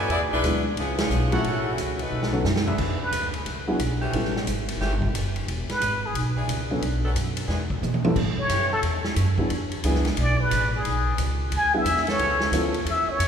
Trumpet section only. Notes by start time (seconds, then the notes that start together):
Already playing: E4 B4 D5 G#5
1.32 E4 A4 C#5 F#5
2.66 D4 G#4 B4 E5